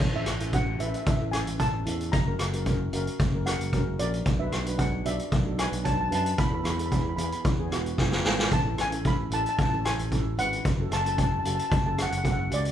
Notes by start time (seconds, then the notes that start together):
Already playing: C#5
0.00 A1, kick
0.13 C#4 E4 A4 E5
0.26 A1, cross-stick, closed hi-hat
0.40 C#4 E4 A4, closed hi-hat
0.52 C#4 E4 F#4 F#5, kick, closed hi-hat
0.79 A1 C#4 E4 B4 E5, closed hi-hat
0.88 E5
0.94 E5, closed hi-hat
1.03 A1 E5, kick, closed hi-hat
1.11 E5
1.18 C#4 E4 A4 E5
1.31 C#4 E4 A4 G#5, cross-stick, closed hi-hat
1.47 A1, closed hi-hat
1.58 C#4 E4 A4 A5, kick, closed hi-hat
1.85 E2 C#4 E4 A4, closed hi-hat
2.01 closed hi-hat
2.12 F#1 A#5, kick, closed hi-hat
2.26 C#4 F#4 A#4
2.39 F#1, cross-stick, closed hi-hat
2.53 C#4 F#4 A#4, closed hi-hat
2.66 C#4 F#4 A#4, kick, closed hi-hat
2.92 F#1 C#4 F#4 A#4, closed hi-hat
3.07 closed hi-hat
3.19 F#1, kick, closed hi-hat
3.33 C#4 F#4 A#4
3.46 C#4 F#4 A#4 F#5, cross-stick, closed hi-hat
3.60 F#1, closed hi-hat
3.72 C#4 F#4 A#4, kick, closed hi-hat
3.99 A#1 C#4 F#4 A#4 D5, closed hi-hat
4.14 closed hi-hat
4.26 B1, kick, closed hi-hat
4.39 D4 F#4 B4 E5
4.52 B1, cross-stick, closed hi-hat
4.66 D4 F#4 B4, closed hi-hat
4.78 D4 F#4 G#4 F#5, kick, closed hi-hat
5.05 B1 D4 F#4 D5 E5, closed hi-hat
5.19 closed hi-hat
5.32 B1, kick, closed hi-hat
5.45 D4 F#4 A4
5.57 D4 F#4 B4 G#5, cross-stick, closed hi-hat
5.72 B1, closed hi-hat
5.83 D4 F#4 C#5 A5, kick, closed hi-hat
5.93 A5
6.01 A5
6.08 F#2 D4 F#4 B4 A5, closed hi-hat
6.15 A5
6.25 A5, closed hi-hat
6.38 E2 B5, kick, closed hi-hat
6.47 B5
6.51 B3 E4 A4 B5
6.63 E2 B5, cross-stick, closed hi-hat
6.70 B5
6.78 B3 E4 A4 B5, closed hi-hat
6.86 B5
6.90 B3 E4 G#4 B5, kick, closed hi-hat
7.01 B5
7.09 B5
7.16 E2 B3 E4 G#4 B5, closed hi-hat
7.24 B5
7.32 B5, closed hi-hat
7.45 E2, kick, closed hi-hat
7.58 B3 E4 G#4
7.71 E1 B3 E4 F#4, cross-stick, closed hi-hat
7.86 closed hi-hat
7.98 F#1 B3 E4 G#4, kick, snare
8.12 snare
8.25 G#1 B3 E4 G#4, snare
8.39 snare
8.51 A1 A5, kick, closed hi-hat
8.65 C#4 E4 A4
8.78 A1 G#5, cross-stick, closed hi-hat
8.92 C#4 E4 A4, closed hi-hat
9.05 C#4 E4 A4 B5, kick, closed hi-hat
9.31 A1 C#4 E4 A4 A5, closed hi-hat
9.41 A5
9.46 A5, closed hi-hat
9.57 A1 A5, kick, closed hi-hat
9.63 A5
9.70 C#4 E4 A5
9.74 A4
9.85 C#4 E4 A4 G#5, cross-stick, closed hi-hat
9.98 A1, closed hi-hat
10.12 C#4 E4 A4, kick, closed hi-hat
10.37 G#1 C#4 E4 B4 F#5, closed hi-hat
10.53 closed hi-hat
10.65 F#1, kick, closed hi-hat
10.80 C#4 F#4 A4
10.91 F#1 A5, cross-stick, closed hi-hat
11.01 A5
11.06 C#4 F#4 A4 A5, closed hi-hat
11.17 C#4 F#4 A4 A5, kick, closed hi-hat
11.23 A5
11.32 A5
11.39 A5
11.44 F#1 C#4 F#4 A4 A5, closed hi-hat
11.55 A5, closed hi-hat
11.63 A5
11.70 F#1 A5, kick, closed hi-hat
11.78 A5
11.85 C#4 F#4 A4 A5
11.97 C#4 F#4 G#4, cross-stick, closed hi-hat
12.02 F#5
12.09 F#1 F#5, closed hi-hat
12.17 F#5
12.24 C#4 F#4 A4 F#5, kick, closed hi-hat
12.32 F#5
12.39 F#5
12.49 C#2 C#4 F#4 G#4, closed hi-hat
12.54 D5
12.65 closed hi-hat